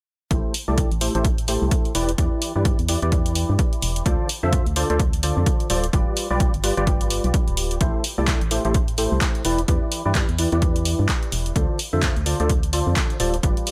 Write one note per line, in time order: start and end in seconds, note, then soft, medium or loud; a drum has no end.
0.31 0.42 A1 loud
0.31 0.53 A3 medium
0.31 0.53 E4 medium
0.31 0.53 G4 medium
0.31 0.53 A4 medium
0.31 0.53 C5 medium
0.31 kick loud
0.31 closed hi-hat medium
0.54 open hi-hat medium
0.68 0.86 C2 medium
0.68 0.90 A3 medium
0.68 0.90 E4 medium
0.68 0.90 G4 medium
0.68 0.90 A4 medium
0.68 0.90 D5 medium
0.78 kick loud
0.78 closed hi-hat medium
0.91 1.09 A1 medium
0.91 closed hi-hat soft
1.01 1.13 A3 medium
1.01 1.13 E4 medium
1.01 1.13 G4 medium
1.01 1.13 A4 medium
1.01 1.13 C5 medium
1.01 open hi-hat loud
1.15 1.57 A1 medium
1.15 1.27 A3 medium
1.15 1.27 E4 medium
1.15 1.27 G4 medium
1.15 1.27 A4 medium
1.15 1.27 C5 loud
1.15 closed hi-hat soft
1.24 kick loud
1.24 closed hi-hat medium
1.38 closed hi-hat soft
1.48 1.93 A3 medium
1.48 1.93 E4 medium
1.48 1.93 G4 medium
1.48 1.93 A4 medium
1.48 1.93 C5 medium
1.48 open hi-hat loud
1.62 1.69 C2 loud
1.71 kick loud
1.71 closed hi-hat medium
1.85 closed hi-hat soft
1.95 2.14 E1 medium
1.95 2.10 E3 medium
1.95 2.10 E4 medium
1.95 2.10 G4 medium
1.95 2.10 B4 medium
1.95 2.10 D5 loud
1.95 open hi-hat loud
2.09 closed hi-hat medium
2.18 2.29 E2 loud
2.18 2.52 E3 medium
2.18 2.52 E4 medium
2.18 2.52 G4 medium
2.18 2.52 B4 medium
2.18 2.52 D5 medium
2.18 kick loud
2.18 closed hi-hat medium
2.42 open hi-hat loud
2.56 2.73 G2 medium
2.56 2.77 E3 medium
2.56 2.77 E4 medium
2.56 2.77 G4 medium
2.56 2.77 B4 medium
2.56 2.77 D5 medium
2.65 kick loud
2.65 closed hi-hat medium
2.79 2.96 E2 medium
2.79 closed hi-hat soft
2.88 2.99 E3 medium
2.88 2.99 E4 medium
2.88 2.99 G4 medium
2.88 2.99 B4 medium
2.88 2.99 D5 medium
2.88 open hi-hat loud
3.02 3.44 E2 medium
3.02 4.04 E3 medium
3.02 4.04 E4 medium
3.02 4.04 G4 medium
3.02 4.04 B4 medium
3.02 4.04 D5 loud
3.02 closed hi-hat soft
3.12 kick loud
3.12 closed hi-hat medium
3.26 closed hi-hat soft
3.35 open hi-hat loud
3.49 3.57 G2 loud
3.59 kick loud
3.59 closed hi-hat medium
3.73 closed hi-hat soft
3.82 4.02 E1 medium
3.82 open hi-hat loud
3.96 closed hi-hat medium
4.06 4.17 D2 loud
4.06 4.28 D3 medium
4.06 4.28 F4 medium
4.06 4.28 A4 medium
4.06 4.28 C5 medium
4.06 4.28 D5 medium
4.06 kick loud
4.06 closed hi-hat medium
4.29 open hi-hat loud
4.43 4.61 F2 medium
4.43 4.65 D3 medium
4.43 4.65 F4 medium
4.43 4.65 A4 medium
4.43 4.65 C5 medium
4.43 4.65 E5 medium
4.53 kick loud
4.53 closed hi-hat medium
4.66 4.84 D2 medium
4.66 closed hi-hat soft
4.76 4.88 D3 medium
4.76 4.88 F4 medium
4.76 4.88 A4 medium
4.76 4.88 C5 medium
4.76 4.88 D5 medium
4.76 open hi-hat loud
4.90 5.32 D2 medium
4.90 5.02 D3 medium
4.90 5.02 F4 medium
4.90 5.02 A4 medium
4.90 5.02 C5 medium
4.90 5.02 D5 loud
4.90 closed hi-hat soft
4.99 kick loud
4.99 closed hi-hat medium
5.13 closed hi-hat soft
5.23 5.68 D3 medium
5.23 5.68 F4 medium
5.23 5.68 A4 medium
5.23 5.68 C5 medium
5.23 5.68 D5 medium
5.23 open hi-hat loud
5.37 5.44 F2 loud
5.46 kick loud
5.46 closed hi-hat medium
5.60 closed hi-hat soft
5.70 5.89 D1 medium
5.70 5.85 G3 medium
5.70 5.85 F4 medium
5.70 5.85 A4 medium
5.70 5.85 C5 medium
5.70 5.85 D5 loud
5.70 open hi-hat loud
5.84 closed hi-hat soft
5.93 6.04 G1 loud
5.93 6.27 G3 medium
5.93 6.27 F4 medium
5.93 6.27 G4 medium
5.93 6.27 B4 medium
5.93 6.27 D5 medium
5.93 kick loud
5.93 closed hi-hat medium
6.17 open hi-hat loud
6.30 6.48 B1 medium
6.30 6.52 G3 medium
6.30 6.52 F4 medium
6.30 6.52 G4 medium
6.30 6.52 B4 medium
6.30 6.52 D5 medium
6.40 kick loud
6.40 closed hi-hat medium
6.54 6.71 G1 medium
6.54 closed hi-hat soft
6.64 6.74 G3 medium
6.64 6.74 F4 medium
6.64 6.74 G4 medium
6.64 6.74 B4 medium
6.64 6.74 D5 medium
6.64 open hi-hat loud
6.77 7.19 G1 medium
6.77 7.78 G3 medium
6.77 7.78 F4 medium
6.77 7.78 G4 medium
6.77 7.78 B4 medium
6.77 7.78 D5 loud
6.77 closed hi-hat soft
6.87 kick loud
6.87 closed hi-hat medium
7.01 closed hi-hat soft
7.10 open hi-hat loud
7.24 7.32 B1 loud
7.24 closed hi-hat soft
7.34 kick loud
7.34 closed hi-hat medium
7.48 7.77 D1 medium
7.48 closed hi-hat soft
7.57 open hi-hat loud
7.71 closed hi-hat soft
7.81 7.92 A1 loud
7.81 8.03 A3 medium
7.81 8.03 E4 medium
7.81 8.03 G4 medium
7.81 8.03 A4 medium
7.81 8.03 C5 medium
7.81 kick loud
7.81 closed hi-hat medium
8.04 open hi-hat loud
8.18 8.36 C2 medium
8.18 8.40 A3 medium
8.18 8.40 E4 medium
8.18 8.40 G4 medium
8.18 8.40 A4 medium
8.18 8.40 D5 medium
8.28 kick loud
8.28 clap loud
8.28 closed hi-hat medium
8.41 8.59 A1 medium
8.41 closed hi-hat soft
8.51 8.63 A3 medium
8.51 8.63 E4 medium
8.51 8.63 G4 medium
8.51 8.63 A4 medium
8.51 8.63 C5 medium
8.51 open hi-hat loud
8.65 9.07 A1 medium
8.65 8.77 A3 medium
8.65 8.77 E4 medium
8.65 8.77 G4 medium
8.65 8.77 A4 medium
8.65 8.77 C5 loud
8.65 closed hi-hat soft
8.74 kick loud
8.74 closed hi-hat medium
8.88 closed hi-hat soft
8.98 9.43 A3 medium
8.98 9.43 E4 medium
8.98 9.43 G4 medium
8.98 9.43 A4 medium
8.98 9.43 C5 medium
8.98 open hi-hat loud
9.12 9.19 C2 loud
9.21 kick loud
9.21 clap loud
9.21 closed hi-hat medium
9.35 closed hi-hat soft
9.45 9.64 E1 medium
9.45 9.60 E3 medium
9.45 9.60 E4 medium
9.45 9.60 G4 medium
9.45 9.60 B4 medium
9.45 9.60 D5 medium
9.45 open hi-hat loud
9.58 closed hi-hat soft
9.68 9.79 E2 loud
9.68 10.02 E3 medium
9.68 10.02 E4 medium
9.68 10.02 G4 medium
9.68 10.02 B4 medium
9.68 10.02 D5 medium
9.68 kick loud
9.68 closed hi-hat medium
9.92 open hi-hat medium
10.05 10.23 G2 medium
10.05 10.27 E3 medium
10.05 10.27 E4 medium
10.05 10.27 G4 medium
10.05 10.27 B4 medium
10.05 10.27 D5 medium
10.15 kick loud
10.15 clap loud
10.15 closed hi-hat medium
10.29 10.46 E2 medium
10.29 closed hi-hat soft
10.38 10.49 E3 medium
10.38 10.49 E4 medium
10.38 10.49 G4 medium
10.38 10.49 B4 medium
10.38 10.49 D5 medium
10.38 open hi-hat loud
10.52 10.94 E2 medium
10.52 11.54 E3 medium
10.52 11.53 E4 medium
10.52 11.53 G4 medium
10.52 11.53 B4 medium
10.52 11.53 D5 loud
10.52 closed hi-hat soft
10.62 kick loud
10.62 closed hi-hat medium
10.76 closed hi-hat soft
10.85 open hi-hat loud
10.99 11.07 G2 loud
11.09 kick loud
11.09 clap loud
11.09 closed hi-hat medium
11.23 closed hi-hat soft
11.32 11.52 E1 medium
11.32 open hi-hat medium
11.46 closed hi-hat soft
11.56 11.67 D2 loud
11.56 11.78 D3 medium
11.56 11.78 F4 medium
11.56 11.78 A4 medium
11.56 11.78 C5 medium
11.56 11.78 D5 medium
11.56 kick loud
11.56 closed hi-hat medium
11.79 open hi-hat medium
11.93 12.11 F2 medium
11.93 12.15 D3 medium
11.93 12.15 F4 medium
11.93 12.15 A4 medium
11.93 12.15 C5 medium
11.93 12.15 E5 medium
12.03 kick loud
12.03 clap loud
12.03 closed hi-hat medium
12.16 12.34 D2 medium
12.16 closed hi-hat soft
12.26 12.38 D3 medium
12.26 12.38 F4 medium
12.26 12.38 A4 medium
12.26 12.38 C5 medium
12.26 12.38 D5 medium
12.26 open hi-hat medium
12.40 12.82 D2 medium
12.40 12.52 D3 medium
12.40 12.52 F4 medium
12.40 12.52 A4 medium
12.40 12.52 C5 medium
12.40 12.52 D5 loud
12.40 closed hi-hat soft
12.49 kick loud
12.49 closed hi-hat medium
12.63 closed hi-hat soft
12.73 13.18 D3 medium
12.73 13.18 F4 medium
12.73 13.18 A4 medium
12.73 13.18 C5 medium
12.73 13.18 D5 medium
12.73 open hi-hat loud
12.87 12.94 F2 loud
12.96 kick loud
12.96 clap loud
12.96 closed hi-hat medium
13.10 closed hi-hat soft
13.20 13.39 D1 loud
13.20 13.35 G3 medium
13.20 13.35 F4 medium
13.20 13.35 A4 medium
13.20 13.35 C5 medium
13.20 13.35 D5 medium
13.20 open hi-hat medium
13.34 closed hi-hat medium
13.43 13.54 G1 loud
13.43 13.71 G3 medium
13.43 13.71 F4 medium
13.43 13.71 G4 medium
13.43 13.71 B4 medium
13.43 13.71 D5 medium
13.43 kick loud
13.43 closed hi-hat medium
13.57 closed hi-hat soft
13.67 open hi-hat medium